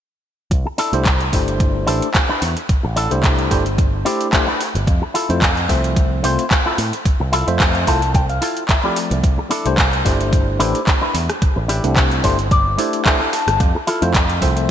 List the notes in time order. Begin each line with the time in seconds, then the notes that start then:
0.51 C2, kick, closed hi-hat
0.65 muted clean electric guitar stroke
0.78 D4 E4 A4, open hi-hat
0.93 C2 A3 D4 E4 G4 C5, closed hi-hat
1.05 muted clean electric guitar stroke, kick, clap, closed hi-hat
1.21 closed hi-hat
1.33 G1 A3 D4 E4 G4 C5, kick, open hi-hat
1.48 closed hi-hat
1.60 muted clean electric guitar stroke, kick, closed hi-hat
1.86 A1 A3 D4 E4 G4 A4 C5, open hi-hat
2.02 closed hi-hat
2.14 kick, clap, closed hi-hat
2.29 D4 E4 B4
2.42 E2, open hi-hat
2.56 muted clean electric guitar stroke, closed hi-hat
2.69 muted picked electric bass stroke, kick, closed hi-hat
2.83 A1, muted clean electric guitar stroke
2.96 D4 E4 A4, open hi-hat
3.11 C2 A3 D4 E4 G4 C5, closed hi-hat
3.23 muted clean electric guitar stroke, kick, clap, closed hi-hat
3.39 closed hi-hat
3.50 G1 A3 D4 E4 G4 C5, kick, open hi-hat
3.66 closed hi-hat
3.78 muted clean electric guitar stroke, kick, closed hi-hat
4.05 A3 D4 E4 G4 C5, open hi-hat
4.21 closed hi-hat
4.32 A3 D4 E4 G4 C5, kick, clap, closed hi-hat
4.47 D4 E4 B4
4.61 open hi-hat
4.75 G1, muted clean electric guitar stroke, closed hi-hat
4.87 F2, kick, closed hi-hat
5.02 muted clean electric guitar stroke
5.14 E4 F4 A4, open hi-hat
5.29 F2 A3 C4 E4 F4 C5, closed hi-hat
5.42 muted clean electric guitar stroke, kick, clap, closed hi-hat
5.57 closed hi-hat
5.69 C2 F3 A3 C4 C5 E5, kick, open hi-hat
5.84 closed hi-hat
5.96 muted clean electric guitar stroke, kick, closed hi-hat
6.23 C2 A3 C4 E4 F4 C5, open hi-hat
6.39 closed hi-hat
6.51 kick, clap, closed hi-hat
6.66 E4 F4 A4
6.78 A2, open hi-hat
6.93 muted clean electric guitar stroke, closed hi-hat
7.05 muted picked electric bass stroke, kick, closed hi-hat
7.20 C2, muted clean electric guitar stroke
7.32 E4 F4 A4, open hi-hat
7.47 F2 F3 A3 C4 C5 E5, closed hi-hat
7.60 muted clean electric guitar stroke, kick, clap, closed hi-hat
7.75 closed hi-hat
7.87 C2 A3 C4 E4 F4 C5 A5, kick, open hi-hat
8.02 closed hi-hat
8.15 G5, muted clean electric guitar stroke, kick, closed hi-hat
8.29 F5, closed hi-hat
8.41 E4 F4 A4, open hi-hat
8.57 closed hi-hat
8.69 E5, kick, clap, closed hi-hat
8.84 F3 A3 C4 E4 F4 G4 D5
8.96 open hi-hat
9.11 C2, muted clean electric guitar stroke, closed hi-hat
9.23 C2, kick, closed hi-hat
9.38 muted clean electric guitar stroke
9.50 D4 E4 A4, open hi-hat
9.65 C2 A3 D4 E4 G4 C5, closed hi-hat
9.78 muted clean electric guitar stroke, kick, clap, closed hi-hat
9.93 closed hi-hat
10.05 G1 A3 D4 E4 G4 C5, kick, open hi-hat
10.21 closed hi-hat
10.32 muted clean electric guitar stroke, kick, closed hi-hat
10.59 A1 A3 D4 E4 G4 B4 C5, open hi-hat
10.75 closed hi-hat
10.87 kick, clap, closed hi-hat
11.01 D4 E4 B4
11.14 E2, open hi-hat
11.29 muted clean electric guitar stroke, cross-stick, closed hi-hat
11.42 muted picked electric bass stroke, kick, closed hi-hat
11.56 A1, muted clean electric guitar stroke
11.68 D4 E4 G4, open hi-hat
11.84 C2 A3 C4 D4 E4 G4, closed hi-hat
11.96 kick, clap, closed hi-hat
12.11 closed hi-hat
12.24 G1 A3 D4 E4 G4 C5, kick, open hi-hat
12.39 closed hi-hat
12.51 D5, muted clean electric guitar stroke, kick, closed hi-hat
12.78 A3 D4 E4 G4 A4 C5, open hi-hat
12.93 closed hi-hat
13.05 A3 D4 E4 G4 C5 E5, kick, clap, closed hi-hat
13.20 D4 E4 A4
13.33 A5, open hi-hat
13.47 G1, muted clean electric guitar stroke, cross-stick, closed hi-hat
13.60 F2, kick, closed hi-hat
13.75 muted clean electric guitar stroke
13.87 E4 F4 A4, open hi-hat
14.02 F2 A3 C4 E4 F4 C5, closed hi-hat
14.14 muted clean electric guitar stroke, kick, clap, closed hi-hat
14.30 closed hi-hat
14.41 C2 F3 A3 C4 C5 E5, kick, open hi-hat
14.57 closed hi-hat